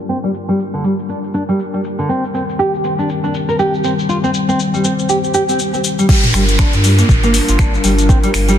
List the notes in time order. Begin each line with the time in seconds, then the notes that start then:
Already playing: G3 D4 F4 A#4
0.09 C4, shaker
0.24 G3, shaker
0.34 shaker
0.49 G3, shaker
0.59 shaker
0.74 D3, shaker
0.84 G3, shaker
0.99 shaker
1.09 D4, shaker
1.24 shaker
1.34 D4, shaker
1.49 G3, shaker
1.59 shaker
1.74 G3, shaker
1.84 shaker
1.99 D3, shaker
2.09 D#3 G3 C4, shaker
2.24 shaker
2.34 C4, shaker
2.49 shaker
2.59 G4, shaker
2.74 shaker
2.84 C4, shaker
2.99 D4, shaker
3.09 shaker
3.24 D4, shaker
3.34 shaker
3.49 A#4, shaker
3.59 G4, shaker
3.74 shaker
3.84 C4, shaker
3.99 shaker
4.09 F4 C5, shaker
4.24 C4, shaker
4.34 shaker
4.49 C4, shaker
4.60 shaker
4.74 G3, shaker
4.84 C4, shaker
4.99 shaker
5.09 G4, shaker
5.24 shaker
5.34 G4, shaker
5.49 C4, shaker
5.59 shaker
5.74 C4, shaker
5.84 shaker
5.99 G3, shaker
6.09 G3 D4 F4 A#4, kick, crash, downlifter, shaker
6.24 closed hi-hat, mid tom, shaker
6.34 G1 G3, finger snap, open hi-hat, shaker
6.49 closed hi-hat, shaker
6.59 D4, finger snap, kick, shaker
6.73 G2, closed hi-hat, shaker
6.84 G3, open hi-hat, shaker
6.99 A#3, closed hi-hat, shaker
7.09 G1, kick, mid tom, shaker
7.23 A#3, closed hi-hat, shaker
7.34 open hi-hat, shaker
7.49 G1 F4, closed hi-hat, shaker
7.59 D4, finger snap, kick, shaker
7.74 shaker
7.84 G1 G3, open hi-hat, shaker
7.99 closed hi-hat, shaker
8.09 C4, kick, shaker
8.23 G3, closed hi-hat, shaker
8.34 G1, finger snap, open hi-hat, shaker
8.49 G3, closed hi-hat, shaker